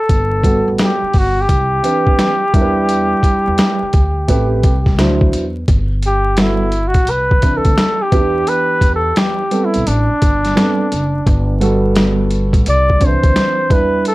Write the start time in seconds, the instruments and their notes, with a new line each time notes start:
Already playing: flugelhorn A4
0.09 upright bass G1, kick, closed hi-hat
0.43 grand piano G3 B3 F#4 A4, kick, closed hi-hat
0.68 upright bass A1
0.78 snare, closed hi-hat
0.83 flugelhorn G4
1.02 muted upright bass stroke
1.14 upright bass G1, kick, open hi-hat
1.19 flugelhorn F#4
1.41 flugelhorn G4
1.49 upright bass C2, kick, closed hi-hat
1.83 grand piano E3 C4 D4 B4, closed hi-hat
2.07 kick
2.19 snare, closed hi-hat
2.54 upright bass E2, grand piano G3 D4 E4 A#4, kick, closed hi-hat
2.61 grand piano B4
2.89 closed hi-hat
3.23 kick, closed hi-hat
3.47 upright bass E2
3.58 snare, closed hi-hat
3.82 muted upright bass stroke
3.93 upright bass D2, kick, closed hi-hat
4.28 upright bass A1, grand piano A3 C4 G4 B4, kick, closed hi-hat
4.63 upright bass C2, kick, closed hi-hat
4.86 kick, snare
4.98 upright bass D2, grand piano F#3 D4 E4 C5, snare, closed hi-hat
5.21 kick
5.33 upright bass E2, closed hi-hat
5.68 upright bass G1, kick, closed hi-hat
6.03 flugelhorn G4, closed hi-hat
6.37 grand piano G3 B3 F#4 A4, snare, closed hi-hat
6.41 flugelhorn E4
6.72 closed hi-hat
6.88 flugelhorn F#4
6.94 upright bass A1, kick, closed hi-hat
7.07 upright bass C2, flugelhorn B4, closed hi-hat
7.31 kick
7.42 grand piano E3 C4 D4 B4, kick, closed hi-hat
7.57 flugelhorn A4
7.65 upright bass D2, kick, closed hi-hat
7.78 snare, closed hi-hat
8.02 flugelhorn G4
8.12 upright bass E2, grand piano E3 B3 D4 G4, kick, closed hi-hat
8.47 flugelhorn B4, closed hi-hat
8.81 upright bass E2, kick, closed hi-hat
8.95 flugelhorn A4
9.16 flugelhorn G4, snare, closed hi-hat
9.51 grand piano G3 B3 C4 A4, closed hi-hat
9.65 flugelhorn E4
9.74 upright bass B1, closed hi-hat
9.87 upright bass A1, flugelhorn D4, closed hi-hat
10.11 muted upright bass stroke
10.22 upright bass G1, kick, closed hi-hat
10.45 snare, closed hi-hat
10.55 grand piano G3 B3 C4 A4, snare, closed hi-hat
10.92 upright bass F#1, closed hi-hat
11.27 upright bass G1, kick, closed hi-hat
11.60 grand piano G3 B3 F#4 A4, closed hi-hat
11.96 snare, closed hi-hat
12.31 closed hi-hat
12.53 upright bass A1, kick, closed hi-hat
12.66 upright bass C2, flugelhorn D5, closed hi-hat
12.90 kick
13.00 grand piano D3 C4 D4 C5, kick, closed hi-hat
13.05 grand piano E3, flugelhorn C5
13.23 upright bass D2, kick, closed hi-hat
13.36 snare, closed hi-hat
13.70 upright bass E2, grand piano G3 D4 E4 B4, flugelhorn B4, kick, closed hi-hat
14.05 flugelhorn A4, closed hi-hat